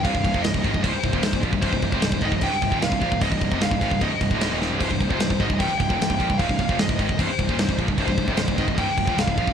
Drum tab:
CC |x-x-x-x-x-x-x-x-|x-x-x-x-x-x-x-x-|x-x-x-x-x-x-x---|x-x-x-x-x-x-x-x-|
SD |----o-------o---|----o-------o---|----o-------o-o-|----o-------o---|
BD |oooo-oooo-oo-ooo|oooo-oooo-oo-ooo|oooo-oooo-oo----|oooo-oooo-oo-ooo|

CC |x-x-x-x-x-x-x-x-|x-x-x-x-x-x-x-x-|
SD |----o-------o---|----o-------o---|
BD |oooo-oooo-oo-ooo|oooo-oooo-oo-ooo|